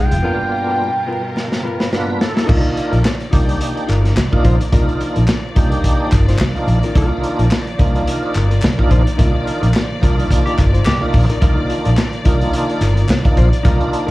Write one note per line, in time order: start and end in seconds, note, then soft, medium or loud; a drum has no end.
0.00 0.13 G#3 medium
0.00 0.21 G#3 medium
0.00 0.10 D#4 medium
0.00 0.21 D#4 medium
0.00 2.45 F4 medium
0.00 1.89 G5 loud
0.10 0.22 F1 loud
0.10 muted hollow-body jazz guitar stroke medium
0.10 closed hi-hat medium
0.23 0.91 G2 medium
0.23 2.46 G2 medium
0.23 2.46 B2 medium
0.23 0.91 A#3 medium
0.23 0.41 B3 medium
0.23 0.91 B3 medium
0.23 0.91 D4 medium
0.23 0.40 F4 loud
0.23 0.91 F4 medium
0.23 0.38 A#4 medium
0.23 2.46 A#4 medium
0.39 muted hollow-body jazz guitar stroke soft
0.51 muted hollow-body jazz guitar stroke soft
0.67 0.79 B3 medium
0.67 0.79 F4 medium
0.67 0.79 A#4 medium
0.80 muted hollow-body jazz guitar stroke soft
1.07 1.22 B3 medium
1.07 1.22 F4 medium
1.07 1.22 A#4 medium
1.23 muted hollow-body jazz guitar stroke soft
1.36 muted hollow-body jazz guitar stroke soft
1.36 snare medium
1.52 muted hollow-body jazz guitar stroke soft
1.52 snare medium
1.63 1.78 B3 medium
1.63 1.78 F4 medium
1.63 1.79 A#4 medium
1.80 1.90 B3 medium
1.80 1.91 F4 medium
1.80 1.91 B4 medium
1.80 snare medium
1.92 2.26 G2 medium
1.92 2.26 A#3 medium
1.92 2.26 B3 medium
1.92 2.26 D4 medium
1.92 2.26 F4 medium
1.92 2.19 B4 medium
1.92 muted hollow-body jazz guitar stroke soft
1.92 snare medium
2.07 muted hollow-body jazz guitar stroke soft
2.21 2.47 A4 medium
2.21 snare loud
2.35 2.46 B3 medium
2.35 2.46 F4 medium
2.35 2.47 A#4 medium
2.35 snare loud
2.46 2.61 C2 medium
2.46 14.11 D#3 medium
2.46 14.11 F3 medium
2.46 2.98 A#3 medium
2.46 14.11 A#3 medium
2.46 2.99 D4 medium
2.46 2.65 D#4 medium
2.46 2.99 D#4 medium
2.46 2.63 F4 loud
2.46 2.99 F4 loud
2.46 2.61 A#4 medium
2.46 14.11 D5 medium
2.46 kick loud
2.46 crash loud
2.62 muted hollow-body jazz guitar stroke medium
2.75 muted hollow-body jazz guitar stroke soft
2.75 closed hi-hat medium
2.91 3.02 A#1 medium
2.91 3.02 D#4 medium
2.91 3.03 F4 medium
2.91 3.03 A#4 medium
2.91 closed hi-hat medium
3.04 muted hollow-body jazz guitar stroke soft
3.04 snare loud
3.04 clap medium
3.21 closed hi-hat soft
3.31 3.54 C2 medium
3.31 3.90 A#3 medium
3.31 3.90 D4 medium
3.31 3.46 D#4 medium
3.31 3.90 D#4 medium
3.31 3.46 F4 medium
3.31 3.90 G4 loud
3.31 3.45 A#4 medium
3.31 kick loud
3.31 closed hi-hat medium
3.47 muted hollow-body jazz guitar stroke soft
3.47 closed hi-hat medium
3.60 muted hollow-body jazz guitar stroke soft
3.60 closed hi-hat medium
3.76 muted hollow-body jazz guitar stroke soft
3.76 closed hi-hat soft
3.87 4.10 G1 medium
3.87 4.02 D#4 medium
3.87 4.02 F4 medium
3.87 4.01 A#4 medium
3.87 clap medium
3.87 closed hi-hat medium
4.03 4.15 D#4 medium
4.03 4.15 F4 medium
4.03 4.14 A#4 medium
4.03 snare soft
4.03 closed hi-hat soft
4.16 4.28 C2 loud
4.16 snare loud
4.16 clap loud
4.32 4.56 A#3 medium
4.32 4.56 D4 medium
4.32 4.56 D#4 medium
4.32 4.56 F4 loud
4.32 muted hollow-body jazz guitar stroke soft
4.32 kick medium
4.43 4.56 A#1 medium
4.43 4.61 D#4 medium
4.43 4.61 F4 medium
4.43 4.60 C5 loud
4.43 kick loud
4.43 closed hi-hat medium
4.61 muted hollow-body jazz guitar stroke medium
4.61 closed hi-hat medium
4.72 4.84 C2 loud
4.72 5.22 A#3 loud
4.72 5.22 D4 medium
4.72 4.89 D#4 medium
4.72 5.22 D#4 medium
4.72 4.89 F4 medium
4.72 5.22 F4 loud
4.72 4.87 A#4 medium
4.72 kick loud
4.72 closed hi-hat medium
4.89 muted hollow-body jazz guitar stroke soft
4.89 closed hi-hat soft
5.01 muted hollow-body jazz guitar stroke soft
5.01 closed hi-hat medium
5.16 5.26 A#1 medium
5.16 5.27 D#4 medium
5.16 5.27 F4 medium
5.16 5.27 A#4 medium
5.16 closed hi-hat medium
5.28 muted hollow-body jazz guitar stroke medium
5.28 snare loud
5.28 clap medium
5.55 5.77 C2 loud
5.55 6.13 A#3 loud
5.55 6.13 D4 medium
5.55 5.69 D#4 medium
5.55 6.13 D#4 medium
5.55 5.70 F4 medium
5.55 6.13 G4 loud
5.55 5.70 A#4 medium
5.55 kick loud
5.55 closed hi-hat medium
5.72 muted hollow-body jazz guitar stroke medium
5.72 closed hi-hat soft
5.84 muted hollow-body jazz guitar stroke soft
5.84 kick medium
5.84 closed hi-hat loud
6.00 muted hollow-body jazz guitar stroke soft
6.12 6.33 G1 medium
6.12 6.26 D#4 medium
6.12 6.26 F4 medium
6.12 6.27 A#4 medium
6.12 kick loud
6.12 clap medium
6.12 closed hi-hat medium
6.28 6.39 D#4 medium
6.28 6.39 F4 medium
6.28 6.39 C5 medium
6.28 snare soft
6.28 closed hi-hat medium
6.38 6.51 C2 medium
6.38 muted hollow-body jazz guitar stroke medium
6.38 snare loud
6.38 clap loud
6.55 6.79 A#3 loud
6.55 6.79 D4 medium
6.55 6.79 D#4 medium
6.55 6.79 F4 medium
6.55 muted hollow-body jazz guitar stroke soft
6.55 closed hi-hat soft
6.68 6.79 A#1 loud
6.68 closed hi-hat medium
6.83 6.94 D#4 medium
6.83 6.95 F4 medium
6.83 6.96 A#4 medium
6.83 closed hi-hat medium
6.95 7.07 C2 loud
6.95 7.45 A#3 medium
6.95 7.45 D4 medium
6.95 7.16 D#4 medium
6.95 7.45 D#4 medium
6.95 7.03 E4 medium
6.95 7.11 F4 medium
6.95 7.10 A#4 loud
6.95 kick loud
6.95 closed hi-hat medium
7.02 7.48 F4 loud
7.11 muted hollow-body jazz guitar stroke medium
7.23 muted hollow-body jazz guitar stroke soft
7.23 closed hi-hat medium
7.39 7.48 A#1 medium
7.39 7.49 D#4 medium
7.39 7.50 F4 medium
7.39 7.50 A#4 medium
7.39 closed hi-hat medium
7.50 muted hollow-body jazz guitar stroke medium
7.50 snare loud
7.50 clap medium
7.67 closed hi-hat soft
7.78 8.00 C2 medium
7.78 8.36 A#3 medium
7.78 8.36 D4 medium
7.78 7.93 D#4 medium
7.78 8.36 D#4 medium
7.78 8.36 F4 loud
7.78 7.93 F4 medium
7.78 7.93 A#4 medium
7.78 kick loud
7.78 closed hi-hat medium
7.94 muted hollow-body jazz guitar stroke soft
7.94 closed hi-hat soft
8.07 muted hollow-body jazz guitar stroke soft
8.07 closed hi-hat loud
8.22 muted hollow-body jazz guitar stroke soft
8.34 8.56 G1 medium
8.34 8.49 D#4 medium
8.34 8.49 F4 medium
8.34 8.50 A#4 medium
8.34 clap medium
8.34 closed hi-hat medium
8.51 8.61 D#4 medium
8.51 8.62 F4 medium
8.51 8.62 A#4 medium
8.51 closed hi-hat soft
8.62 8.75 C2 medium
8.62 muted hollow-body jazz guitar stroke soft
8.62 snare loud
8.62 clap loud
8.78 9.02 A#3 medium
8.78 9.02 D4 medium
8.78 9.03 D#4 medium
8.78 9.03 F4 loud
8.78 muted hollow-body jazz guitar stroke soft
8.78 kick medium
8.89 9.03 A#1 medium
8.89 9.07 D#4 medium
8.89 9.06 F4 loud
8.89 9.05 C5 medium
8.89 kick loud
8.89 closed hi-hat medium
9.06 muted hollow-body jazz guitar stroke soft
9.06 closed hi-hat medium
9.17 9.31 C2 loud
9.17 9.68 A#3 medium
9.17 9.68 D4 medium
9.17 9.35 D#4 medium
9.17 9.68 D#4 medium
9.17 9.26 E4 medium
9.17 9.32 F4 medium
9.17 9.31 A#4 medium
9.17 kick loud
9.17 closed hi-hat medium
9.25 9.72 F4 loud
9.32 muted hollow-body jazz guitar stroke soft
9.46 muted hollow-body jazz guitar stroke soft
9.46 closed hi-hat medium
9.62 9.72 A#1 medium
9.62 9.72 D#4 medium
9.62 9.72 F4 medium
9.62 9.73 A#4 medium
9.62 closed hi-hat medium
9.74 snare loud
9.74 clap medium
10.01 10.24 C2 medium
10.01 10.59 A#3 loud
10.01 10.59 D4 medium
10.01 10.16 D#4 medium
10.01 10.59 D#4 medium
10.01 10.59 F4 loud
10.01 10.16 F4 medium
10.01 10.16 A#4 medium
10.01 kick medium
10.01 closed hi-hat medium
10.17 muted hollow-body jazz guitar stroke medium
10.17 closed hi-hat soft
10.30 muted hollow-body jazz guitar stroke soft
10.30 kick medium
10.30 closed hi-hat loud
10.45 10.53 G4 medium
10.45 muted hollow-body jazz guitar stroke soft
10.45 closed hi-hat soft
10.59 10.80 G1 medium
10.59 10.72 D#4 medium
10.59 10.73 F4 medium
10.59 10.73 A#4 medium
10.59 kick loud
10.59 clap medium
10.59 closed hi-hat medium
10.73 10.85 D#4 soft
10.73 10.85 F4 medium
10.73 10.84 C5 medium
10.73 closed hi-hat soft
10.85 10.98 C2 medium
10.85 11.03 G4 loud
10.85 muted hollow-body jazz guitar stroke soft
10.85 snare loud
10.85 clap loud
11.01 11.25 A#3 loud
11.01 11.25 D4 medium
11.01 11.26 D#4 medium
11.01 11.26 F4 loud
11.01 muted hollow-body jazz guitar stroke medium
11.13 11.26 A#1 loud
11.13 kick loud
11.13 open hi-hat medium
11.29 11.40 D#4 medium
11.29 11.42 F4 medium
11.29 11.43 A#4 medium
11.29 closed hi-hat medium
11.41 11.54 C2 loud
11.41 11.91 A#3 medium
11.41 11.91 D4 medium
11.41 11.91 D#4 medium
11.41 11.59 D#4 medium
11.41 11.91 F4 medium
11.41 11.57 F4 medium
11.41 11.56 A#4 loud
11.41 kick loud
11.41 closed hi-hat medium
11.57 muted hollow-body jazz guitar stroke soft
11.69 muted hollow-body jazz guitar stroke soft
11.69 closed hi-hat medium
11.85 11.95 A#1 medium
11.85 11.95 D#4 medium
11.85 11.96 F4 medium
11.85 11.96 A#4 medium
11.85 closed hi-hat medium
11.97 muted hollow-body jazz guitar stroke soft
11.97 snare loud
11.97 clap medium
12.13 closed hi-hat soft
12.24 12.47 C2 medium
12.24 12.82 A#3 medium
12.24 12.82 D4 medium
12.24 12.39 D#4 medium
12.24 12.83 D#4 medium
12.24 12.39 F4 medium
12.24 12.83 F4 loud
12.24 12.39 A#4 medium
12.24 kick medium
12.24 closed hi-hat medium
12.41 closed hi-hat soft
12.53 muted hollow-body jazz guitar stroke soft
12.53 closed hi-hat medium
12.68 muted hollow-body jazz guitar stroke soft
12.68 closed hi-hat soft
12.81 13.02 G1 medium
12.81 12.95 D#4 medium
12.81 12.95 F4 medium
12.81 12.94 A#4 medium
12.81 clap medium
12.81 closed hi-hat medium
12.95 13.07 D#4 medium
12.95 13.07 F4 medium
12.95 13.07 A#4 medium
12.95 closed hi-hat soft
13.08 13.21 C2 medium
13.08 muted hollow-body jazz guitar stroke medium
13.08 snare loud
13.08 clap medium
13.23 13.49 A#3 medium
13.23 13.49 D4 medium
13.23 13.49 D#4 medium
13.23 13.49 F4 loud
13.23 muted hollow-body jazz guitar stroke medium
13.23 kick medium
13.23 closed hi-hat soft
13.36 13.49 A#1 medium
13.36 13.54 D#4 medium
13.36 13.52 F4 medium
13.36 13.51 C5 loud
13.36 kick loud
13.36 closed hi-hat medium
13.52 muted hollow-body jazz guitar stroke soft
13.52 closed hi-hat medium
13.63 13.77 C2 loud
13.63 14.11 A#3 medium
13.63 14.11 D4 medium
13.63 13.81 D#4 loud
13.63 14.11 D#4 medium
13.63 13.81 F4 medium
13.63 14.11 F4 loud
13.63 13.79 A#4 loud
13.63 kick loud
13.63 closed hi-hat medium
13.81 muted hollow-body jazz guitar stroke soft
13.81 closed hi-hat soft
13.92 muted hollow-body jazz guitar stroke soft
13.92 closed hi-hat medium
14.07 14.11 A#4 medium